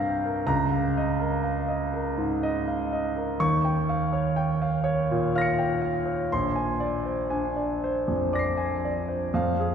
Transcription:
Already playing: C2 G2 A#4 G5 G6 A#6 C7
0.00 F5
0.24 A#4
0.47 C#2 A#5
0.71 F5
0.97 D#5
1.20 A#4
1.43 F5
1.68 D#5
1.94 A#4
2.18 G#2
2.43 D#5
2.68 F5
2.93 D#5
3.16 A#4
3.40 D#2 C#6
3.64 G5
3.89 F5
4.13 C#5
4.36 G5
4.62 F5
4.84 C#5
5.11 A#2
5.35 F5 F6 A#6
5.41 C#7
5.58 G5
5.82 F5
6.06 C#5
6.32 A#1 C6
6.56 G#5
6.80 D5
7.05 C5
7.30 D4 G#5
7.56 D5
7.84 C5
8.08 F2
8.33 D5 D6 A#6
8.39 C7
8.57 G#5
8.85 D5
9.08 C5
9.34 F2 F5
9.60 G#4

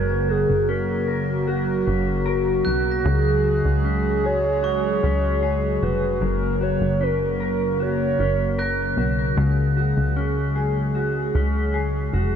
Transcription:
Already playing: F#1 C#3 F#3 A#3 C#4 F#4 A#4 G#6
0.29 F#4 G#4
0.50 F#1
0.69 C#4 A#4
1.08 A#4
1.48 F#4
1.87 F#1 C#4
2.26 F#4 A#4
2.65 B1 F#4 F#6
2.91 A#6
3.04 C#2 C#3 G#3 G#4
3.44 F#4
3.65 C#2
3.85 C#4
4.24 G#4 C#5
4.63 F#4 C#6
5.03 C#2 C#4
5.43 G#4
5.83 F1 F#4 B4
6.21 F#1 F#3 A#3 A#4
6.61 F#4 C#5
6.81 F#1
7.01 C#4 A#4
7.40 A#4
7.80 F#4 C#5
8.19 F#1 C#4
8.58 A#4 F#6
8.97 B1 F#4
9.37 C#2 C#3 G#3 G#4
9.77 F#4
9.97 C#2
10.16 C#4
10.56 G#4
10.95 F#4
11.35 C#2 C#4
11.74 G#4
12.13 F1 F#4

